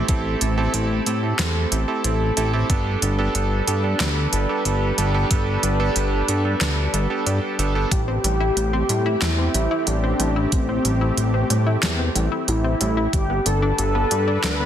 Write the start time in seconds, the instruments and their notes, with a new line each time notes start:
Already playing: analog synth pad A3 C4
0.08 analog synth bass A1, electric grand piano C4 E4 G4 A4, analog synth pad A4, kick, closed hi-hat
0.41 analog synth bass A1, electric grand piano C4 E4 G4 A4, closed hi-hat
0.58 electric grand piano C4 E4 G4 A4
0.74 analog synth bass A1, electric grand piano C4 E4 G4 A4, closed hi-hat
1.06 analog synth bass A2, electric grand piano C4 E4 G4 A4, closed hi-hat
1.23 electric grand piano C4 E4 G4 A4
1.39 analog synth bass E2, electric grand piano C4 E4 G4, snare, closed hi-hat
1.72 analog synth bass A1, electric grand piano C4 E4 G4 A4, closed hi-hat
1.88 electric grand piano C4 E4 G4 A4
2.04 analog synth bass A1, electric grand piano C4 E4 G4 A4, closed hi-hat
2.37 analog synth bass A1, electric grand piano C4 E4 G4 A4, closed hi-hat
2.53 electric grand piano C4 E4 G4 A4
2.70 analog synth bass G1, analog synth pad G3 D4 B4, electric grand piano B3 D4 G4 A4, kick, closed hi-hat
3.02 analog synth bass G1, electric grand piano B3 D4 G4 A4, closed hi-hat
3.18 electric grand piano B3 D4 G4 A4
3.35 analog synth bass G1, electric grand piano B3 D4 G4 A4, closed hi-hat
3.68 analog synth bass G2, electric grand piano B3 D4 G4 A4, closed hi-hat
3.84 electric grand piano B3 D4 G4 A4
4.00 analog synth bass D2, electric grand piano B3 D4 A4, snare, closed hi-hat
4.33 analog synth bass G1, electric grand piano B3 D4 G4 A4, closed hi-hat
4.49 electric grand piano B3 D4 G4 A4
4.65 analog synth bass G1, electric grand piano B3 D4 G4 A4, closed hi-hat
4.98 analog synth bass G1, electric grand piano B3 D4 G4 A4, closed hi-hat
5.14 electric grand piano B3 D4 G4 A4
5.31 analog synth bass G1, electric grand piano B3 D4 G4 A4, kick, closed hi-hat
5.63 analog synth bass G1, electric grand piano B3 D4 G4 A4, closed hi-hat
5.80 electric grand piano B3 D4 G4 A4
5.96 analog synth bass G1, electric grand piano B3 D4 G4 A4, closed hi-hat
6.28 analog synth bass G2, electric grand piano B3 D4 G4 A4, closed hi-hat
6.45 electric grand piano B3 D4 G4 A4
6.61 analog synth bass D2, electric grand piano D4 G4 A4, snare, closed hi-hat
6.94 analog synth bass G1, electric grand piano B3 D4 G4 A4, closed hi-hat
7.10 electric grand piano B3 D4 G4 A4
7.26 analog synth bass G2, electric grand piano B3 D4 G4 A4, closed hi-hat
7.59 analog synth bass G1, electric grand piano B3 D4 G4 A4, closed hi-hat
7.75 electric grand piano B3 D4 G4 A4
7.91 analog synth bass A1, synth arpeggio sound G3, analog synth pad A3 C4 G4, analog synth lead G4, kick, closed hi-hat
8.08 synth arpeggio sound C4
8.24 analog synth bass A1, synth arpeggio sound G3, closed hi-hat
8.40 synth arpeggio sound E4
8.56 analog synth bass A1, synth arpeggio sound G3, closed hi-hat
8.73 synth arpeggio sound C4
8.89 analog synth bass A2, synth arpeggio sound G3, closed hi-hat
9.06 synth arpeggio sound E4
9.22 analog synth bass E2, synth arpeggio sound G3, analog synth lead E4, snare, closed hi-hat
9.38 synth arpeggio sound C4
9.54 analog synth bass A1, synth arpeggio sound G3, closed hi-hat
9.71 synth arpeggio sound E4
9.87 analog synth bass A1, synth arpeggio sound G3, analog synth lead D4, closed hi-hat
10.04 synth arpeggio sound C4
10.20 analog synth bass A1, synth arpeggio sound G3, closed hi-hat
10.36 synth arpeggio sound E4
10.52 analog synth bass A1, synth arpeggio sound G3, analog synth lead C4, kick, closed hi-hat
10.69 synth arpeggio sound C4
10.85 analog synth bass A1, synth arpeggio sound G3, closed hi-hat
11.01 synth arpeggio sound E4
11.17 analog synth bass A1, synth arpeggio sound G3, closed hi-hat
11.34 synth arpeggio sound C4
11.50 analog synth bass A2, synth arpeggio sound G3, closed hi-hat
11.67 synth arpeggio sound E4
11.83 analog synth bass E2, synth arpeggio sound G3, snare, closed hi-hat
11.99 synth arpeggio sound C4
12.15 analog synth bass A1, synth arpeggio sound G3, closed hi-hat
12.32 synth arpeggio sound E4
12.48 analog synth bass A1, synth arpeggio sound G3, analog synth lead E4, closed hi-hat
12.64 synth arpeggio sound C4
12.81 analog synth bass A1, synth arpeggio sound G3, closed hi-hat
12.97 synth arpeggio sound E4
13.13 analog synth bass G1, synth arpeggio sound G3, analog synth pad G3 D4 A4 B4, analog synth lead G4, kick, closed hi-hat
13.30 synth arpeggio sound B3
13.46 analog synth bass G1, synth arpeggio sound G3, analog synth lead A4, closed hi-hat
13.62 synth arpeggio sound D4
13.79 analog synth bass G1, synth arpeggio sound G3, analog synth lead A4, closed hi-hat
13.95 synth arpeggio sound B3
14.11 analog synth bass G2, synth arpeggio sound G3, closed hi-hat
14.28 synth arpeggio sound D4
14.44 analog synth bass D2, synth arpeggio sound G3, analog synth lead B4, snare, closed hi-hat
14.60 synth arpeggio sound B3